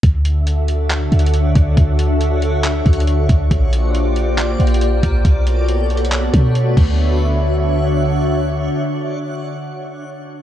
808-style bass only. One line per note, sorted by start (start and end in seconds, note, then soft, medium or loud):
0.03 1.08 D2 loud
1.12 1.54 D2 loud
1.55 1.76 D2 loud
1.77 2.82 D2 loud
2.86 3.28 D2 loud
3.29 3.50 D2 loud
3.51 4.56 A#1 loud
4.60 5.01 A#1 loud
5.03 5.24 A#1 loud
5.25 6.30 B1 loud
6.34 6.75 B2 loud
6.77 8.69 D2 loud